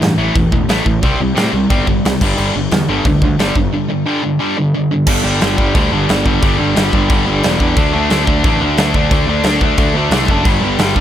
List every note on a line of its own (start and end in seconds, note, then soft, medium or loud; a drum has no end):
0.00 0.12 G2 medium
0.00 0.16 A2 medium
0.00 0.17 E3 medium
0.00 snare loud
0.00 crash medium
0.18 0.29 A1 medium
0.18 0.34 A2 medium
0.18 0.34 E3 medium
0.18 0.34 A3 loud
0.35 0.46 E1 medium
0.35 0.50 A2 medium
0.35 0.51 E3 medium
0.35 kick loud
0.35 crash medium
0.52 0.63 E1 loud
0.52 0.67 A2 medium
0.52 0.68 E3 medium
0.52 kick medium
0.68 0.79 A1 medium
0.68 0.84 A2 loud
0.68 0.85 E3 loud
0.68 0.85 A3 loud
0.68 snare loud
0.68 crash medium
0.86 0.97 A1 medium
0.86 1.01 A2 medium
0.86 1.01 E3 medium
0.86 kick medium
1.03 1.14 C2 medium
1.03 1.19 C3 medium
1.03 1.19 G3 loud
1.03 1.19 C4 loud
1.03 kick loud
1.03 crash medium
1.20 1.31 C2 medium
1.20 1.34 C3 medium
1.20 1.35 G3 medium
1.35 1.47 A2 medium
1.35 1.51 C3 loud
1.35 1.51 G3 loud
1.35 1.52 C4 medium
1.35 snare loud
1.35 crash medium
1.52 1.64 C2 medium
1.52 1.68 C3 medium
1.52 1.68 G3 medium
1.70 1.81 G1 loud
1.70 1.86 C3 loud
1.70 1.86 G3 loud
1.70 1.86 C4 medium
1.70 kick loud
1.70 crash medium
1.87 1.98 G1 medium
1.87 2.02 C3 medium
1.87 2.02 G3 medium
1.87 kick medium
2.05 2.15 C2 medium
2.05 2.20 C3 medium
2.05 2.20 G3 medium
2.05 snare loud
2.05 crash medium
2.21 2.32 G1 medium
2.21 2.37 G2 loud
2.21 2.37 D3 loud
2.21 2.37 G3 loud
2.21 kick loud
2.21 crash loud
2.38 2.49 G1 medium
2.38 2.54 G2 medium
2.38 2.54 D3 medium
2.38 2.54 G3 loud
2.38 crash medium
2.56 2.66 G1 medium
2.56 2.71 G2 medium
2.56 2.71 D3 medium
2.71 2.83 E2 loud
2.71 2.87 G2 medium
2.71 2.87 D3 medium
2.71 snare loud
2.71 crash medium
2.88 2.99 G1 loud
2.88 3.04 G2 medium
2.88 3.04 D3 loud
2.88 3.05 G3 loud
3.05 3.16 D2 loud
3.05 3.21 G2 medium
3.05 3.21 D3 medium
3.05 kick loud
3.05 crash medium
3.22 3.33 D2 loud
3.22 3.38 G2 medium
3.22 3.38 D3 medium
3.22 kick medium
3.38 3.49 G1 medium
3.38 3.55 G2 loud
3.38 3.55 D3 loud
3.38 3.55 G3 loud
3.38 snare loud
3.38 crash medium
3.55 3.67 G1 medium
3.55 3.71 G2 medium
3.55 3.72 D3 medium
3.55 kick medium
3.74 3.88 G2 medium
3.74 3.88 D3 medium
3.90 4.05 G2 medium
3.90 4.05 D3 medium
4.06 4.22 G2 medium
4.06 4.22 D3 medium
4.06 4.23 G3 loud
4.23 4.38 G2 medium
4.23 4.39 D3 medium
4.39 4.55 G2 medium
4.39 4.56 D3 medium
4.39 4.56 G3 loud
4.57 4.72 G2 medium
4.57 4.72 D3 medium
4.75 4.89 G2 medium
4.75 4.89 D3 loud
4.91 5.05 G2 medium
4.91 5.06 D3 medium
5.07 5.22 G1 medium
5.07 5.25 G2 loud
5.07 5.23 D3 loud
5.07 5.24 G3 loud
5.07 kick loud
5.07 crash loud
5.07 crash medium
5.24 5.39 G1 medium
5.24 5.40 G2 medium
5.24 5.40 D3 medium
5.24 5.41 G3 loud
5.41 5.56 G1 medium
5.41 5.57 G2 medium
5.41 5.56 D3 medium
5.41 5.57 G3 loud
5.41 snare loud
5.41 crash medium
5.57 5.73 G1 loud
5.57 5.73 G2 medium
5.57 5.74 D3 medium
5.57 5.74 G3 loud
5.57 kick loud
5.75 5.90 D2 medium
5.75 5.92 G2 medium
5.75 5.92 D3 loud
5.75 5.92 G3 loud
5.75 kick loud
5.75 crash medium
5.92 6.06 G1 loud
5.92 6.08 G2 medium
5.92 6.08 D3 medium
5.92 6.09 G3 loud
6.09 6.38 G1 medium
6.09 6.26 G2 medium
6.09 6.26 D3 loud
6.09 6.25 G3 loud
6.09 snare loud
6.09 crash medium
6.26 6.41 G2 medium
6.26 6.42 D3 medium
6.26 6.42 G3 loud
6.26 kick medium
6.42 6.57 G1 medium
6.42 6.58 G2 medium
6.42 6.57 D3 loud
6.42 6.57 G3 loud
6.42 kick loud
6.42 crash medium
6.58 6.74 G1 medium
6.58 6.74 G2 medium
6.58 6.75 D3 medium
6.58 6.75 G3 loud
6.75 6.91 G1 medium
6.75 6.93 G2 medium
6.75 6.92 D3 medium
6.75 6.93 G3 loud
6.75 snare loud
6.75 crash medium
6.93 7.08 G1 medium
6.93 7.08 G2 medium
6.93 7.09 D3 medium
6.93 7.10 G3 medium
6.93 kick medium
7.10 7.24 G1 loud
7.10 7.25 G2 loud
7.10 7.25 D3 loud
7.10 7.25 G3 loud
7.10 kick loud
7.10 crash medium
7.26 7.41 G1 loud
7.26 7.42 G2 medium
7.26 7.43 D3 medium
7.26 7.43 G3 loud
7.43 7.58 E1 medium
7.43 7.60 G2 medium
7.43 7.60 D3 loud
7.43 7.59 G3 loud
7.43 snare loud
7.43 crash medium
7.60 7.75 E2 medium
7.60 7.76 G2 medium
7.60 7.76 D3 medium
7.60 7.76 G3 loud
7.60 kick medium
7.76 7.91 D2 medium
7.76 7.94 D3 loud
7.76 7.94 A3 loud
7.76 7.93 D4 loud
7.76 kick loud
7.76 crash medium
7.93 8.09 D2 medium
7.93 8.10 D3 medium
7.93 8.10 A3 medium
7.93 8.11 D4 loud
8.10 8.25 D2 loud
8.10 8.27 D3 medium
8.10 8.27 A3 medium
8.10 8.26 D4 loud
8.10 snare loud
8.10 crash medium
8.26 8.42 D2 loud
8.26 8.43 D3 medium
8.26 8.43 A3 medium
8.26 8.45 D4 loud
8.26 kick medium
8.44 8.59 A1 loud
8.44 8.60 D3 loud
8.44 8.59 A3 loud
8.44 8.61 D4 loud
8.44 kick loud
8.44 crash medium
8.61 8.76 D2 loud
8.61 8.78 D3 medium
8.61 8.78 A3 medium
8.61 8.79 D4 loud
8.77 9.07 D2 medium
8.77 8.95 D3 medium
8.77 8.95 A3 loud
8.77 8.95 D4 loud
8.77 snare loud
8.77 crash medium
8.94 9.11 D3 medium
8.94 9.12 A3 medium
8.94 9.13 D4 loud
8.94 kick medium
9.11 9.26 D2 medium
9.11 9.29 D3 loud
9.11 9.28 A3 loud
9.11 9.29 D4 loud
9.11 kick loud
9.11 crash medium
9.28 9.42 D2 medium
9.28 9.45 D3 medium
9.28 9.45 A3 medium
9.28 9.46 D4 loud
9.44 9.59 D2 medium
9.44 9.61 D3 medium
9.44 9.61 A3 medium
9.44 9.61 D4 loud
9.44 snare loud
9.44 crash medium
9.61 9.76 D2 loud
9.61 9.77 D3 medium
9.61 9.77 A3 medium
9.61 9.79 D4 medium
9.61 kick medium
9.78 9.93 D2 loud
9.78 9.96 D3 medium
9.78 9.97 A3 loud
9.78 9.96 D4 loud
9.78 kick loud
9.78 crash medium
9.94 10.09 D2 loud
9.94 10.12 D3 medium
9.94 10.12 A3 medium
9.94 10.13 D4 loud
10.10 10.25 C2 medium
10.10 10.30 D3 medium
10.10 10.30 A3 medium
10.10 10.31 D4 loud
10.10 snare loud
10.10 crash medium
10.28 10.43 F#1 medium
10.28 10.44 D3 medium
10.28 10.46 A3 medium
10.28 11.00 D4 medium
10.28 kick medium
10.45 10.60 G1 medium
10.45 10.63 G2 loud
10.45 10.62 D3 loud
10.45 10.63 G3 loud
10.45 kick loud
10.45 crash medium
10.61 10.76 G1 medium
10.61 10.79 G2 medium
10.61 10.78 D3 medium
10.61 10.79 G3 loud
10.79 10.94 G1 medium
10.79 10.96 G2 medium
10.79 10.95 D3 medium
10.79 10.95 G3 medium
10.79 snare loud
10.79 crash medium
10.96 11.00 G1 loud
10.96 11.00 G2 medium
10.96 11.00 D3 medium
10.96 11.00 G3 medium
10.96 kick medium